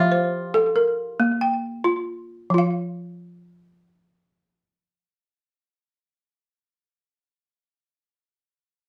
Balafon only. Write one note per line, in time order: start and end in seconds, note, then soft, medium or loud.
0.00 0.32 F3 medium
0.12 0.76 C5 medium
0.54 0.97 A4 medium
0.76 1.41 A#4 medium
1.20 1.63 A#3 medium
1.41 2.06 G5 medium
1.84 2.28 F4 medium
2.50 6.56 F3 medium
2.54 6.60 F4 medium
2.58 6.64 F5 medium